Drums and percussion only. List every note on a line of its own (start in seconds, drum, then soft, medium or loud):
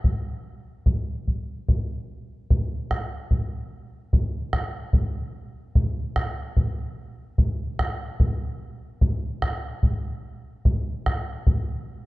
0.04 bombo low medium
0.86 bombo low medium
1.28 bombo low medium
1.69 bombo low medium
2.50 bombo low medium
2.91 bombo rim soft
2.91 bombo low soft
3.31 bombo low medium
4.13 bombo low medium
4.53 bombo rim soft
4.53 bombo low soft
4.93 bombo low medium
5.75 bombo low medium
6.16 bombo rim medium
6.16 bombo low medium
6.57 bombo low medium
7.38 bombo low medium
7.79 bombo rim medium
7.79 bombo low medium
8.20 bombo low medium
9.01 bombo low medium
9.42 bombo rim medium
9.42 bombo low medium
9.83 bombo low medium
10.65 bombo low medium
11.06 bombo rim soft
11.06 bombo low medium
11.47 bombo low medium